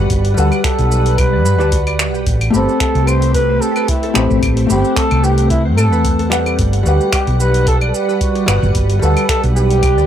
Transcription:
Already playing: hollow-body jazz guitar G3 B4 F#5, string machine G3 B4 F#5, harp F#4 B4 D5
0.10 fretless electric bass G1, kick, open hi-hat, shaker
0.25 open hi-hat
0.34 fretless electric bass D2, hollow-body jazz guitar G3 B4, harp F#4, flugelhorn A4, shaker
0.40 hollow-body jazz guitar F#5
0.52 claves, shaker
0.64 harp G4, flugelhorn A4, finger snap, kick, open hi-hat, shaker
0.79 fretless electric bass B1, open hi-hat, shaker
0.91 harp B4, shaker
1.06 open hi-hat, shaker
1.18 flugelhorn B4, kick, open hi-hat, claves, shaker
1.33 harp D5
1.45 fretless electric bass G2, harp B5, shaker
1.58 fretless electric bass D2, hollow-body jazz guitar G3 G4 B4 A5, harp D5, shaker
1.72 harp F#4, kick, open hi-hat, shaker
1.87 harp D5, open hi-hat, claves
1.99 finger snap, shaker
2.14 fretless electric bass B1, harp G5, shaker
2.26 fretless electric bass A1, string machine A3 C4 G4, kick, open hi-hat, shaker
2.41 open hi-hat, claves
2.50 fretless electric bass G1, hollow-body jazz guitar A3 G4 B5, harp G4, flugelhorn A4, shaker
2.56 hollow-body jazz guitar C4
2.69 shaker
2.80 harp A4, flugelhorn A4, finger snap, kick, open hi-hat, shaker
2.95 fretless electric bass C2, open hi-hat
3.07 harp B4, flugelhorn C5, claves, shaker
3.22 open hi-hat, shaker
3.34 flugelhorn B4, kick, open hi-hat, shaker
3.49 harp C5
3.61 flugelhorn A4, shaker
3.76 harp B4, claves, shaker
3.88 flugelhorn E4, kick, open hi-hat, shaker
4.03 harp A4, open hi-hat
4.14 fretless electric bass A1, hollow-body jazz guitar A3 C4 G4 B5, finger snap, shaker
4.30 fretless electric bass A1, harp G4, shaker
4.43 fretless electric bass A1, string machine F#5, kick, open hi-hat, claves, shaker
4.57 open hi-hat
4.67 fretless electric bass G1, hollow-body jazz guitar A3 G4 B5, harp G4, flugelhorn G4, shaker
4.72 hollow-body jazz guitar C4
4.85 shaker
4.96 harp A4, flugelhorn A4, finger snap, kick, open hi-hat, shaker
5.11 fretless electric bass C2, open hi-hat, claves
5.24 flugelhorn G4, harp B4, shaker
5.38 open hi-hat, shaker
5.50 flugelhorn E4, kick, open hi-hat, shaker
5.65 harp C5
5.77 fretless electric bass A2, flugelhorn A4, claves, shaker
5.92 fretless electric bass E2, harp B4, shaker
6.05 kick, open hi-hat, shaker
6.19 harp A4, open hi-hat
6.30 hollow-body jazz guitar G3 G4 B4 F#5, finger snap, shaker
6.46 harp G4, claves, shaker
6.59 fretless electric bass G1, string machine G3 B4, kick, open hi-hat, shaker
6.73 open hi-hat
6.83 fretless electric bass D2, hollow-body jazz guitar G3 B4, harp F#4, flugelhorn G4, shaker
6.88 hollow-body jazz guitar F#5
7.01 shaker
7.13 harp G4, flugelhorn G4, finger snap, kick, open hi-hat, claves, shaker
7.27 fretless electric bass B1, open hi-hat
7.40 harp B4, flugelhorn B4, shaker
7.54 open hi-hat, shaker
7.67 flugelhorn A4, kick, open hi-hat, shaker
7.81 harp D5, claves
7.88 flugelhorn A4
7.94 flugelhorn G4, shaker
8.08 harp B4, shaker
8.15 flugelhorn G4
8.21 flugelhorn F#4, kick, open hi-hat, shaker
8.35 harp G4, open hi-hat
8.46 fretless electric bass G1, hollow-body jazz guitar G3 B4 F#5, finger snap, claves, shaker
8.62 fretless electric bass G1, harp F#4, shaker
8.75 fretless electric bass G1, kick, open hi-hat, shaker
8.90 open hi-hat, shaker
8.99 fretless electric bass D2, hollow-body jazz guitar G3 B4, harp F#4, flugelhorn A4, shaker
9.05 hollow-body jazz guitar F#5
9.17 open hi-hat, claves, shaker
9.29 harp G4, flugelhorn A4, finger snap, kick, open hi-hat, shaker
9.44 fretless electric bass B1, open hi-hat, shaker
9.56 flugelhorn G4, harp B4, shaker
9.70 open hi-hat, shaker
9.83 kick, open hi-hat, claves, shaker
9.97 fretless electric bass D2, harp D5, shaker

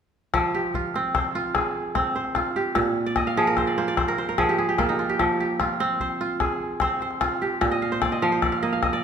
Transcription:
0.34 kora F3, calabash thump, calabash click
0.54 kora G4
0.74 kora F4, calabash thump
0.94 kora C4, calabash click
1.15 kora C5, calabash thump, calabash click
1.24 calabash click
1.35 kora F4
1.55 kora G#4, calabash thump, calabash click
1.95 kora C4, calabash thump, calabash click
2.15 kora C5, calabash click
2.25 calabash click
2.35 kora F4, calabash thump, calabash click
2.56 kora G4
2.75 kora A#2, calabash thump, calabash click
3.06 kora D5
3.16 kora D#5, calabash thump, calabash click
3.27 kora F5
3.36 kora F3 G#4, calabash click
3.47 kora A#4
3.57 kora C5, calabash thump, calabash click
3.67 kora D5, calabash click
3.78 kora A#3 C5
3.88 kora D5
3.97 kora C5, calabash thump, calabash click
4.08 kora A#4
4.18 kora C5
4.29 kora A#4
4.38 kora F3 G#4, calabash thump, calabash click
4.49 kora G4
4.58 kora G#4, calabash click
4.68 kora G4, calabash click
4.78 kora A#3 F4, calabash thump, calabash click
4.89 kora D#4
4.99 kora F4
5.09 kora G4
5.19 kora F3, calabash thump, calabash click
5.40 kora G4
5.60 kora F4, calabash thump, calabash click
5.80 kora C4, calabash click
6.00 kora C5, calabash thump
6.10 calabash click
6.21 kora F4
6.40 kora G#4, calabash thump, calabash click
6.80 kora C4 C5, calabash thump, calabash click
7.01 kora C5, calabash click
7.11 calabash click
7.21 kora F4, calabash thump, calabash click
7.42 kora G4
7.61 kora A#2, calabash thump, calabash click
7.71 kora D#5, calabash click
7.82 kora F5
7.92 kora C5
8.02 kora D5, calabash thump, calabash click
8.12 kora D#5, calabash click
8.22 kora F3 F5, calabash click
8.32 kora C5
8.42 kora D5, calabash thump, calabash click
8.52 kora F5, calabash click
8.62 kora A#3 D#5
8.73 kora F5, calabash click
8.83 kora D#5, calabash thump, calabash click
8.93 kora D5

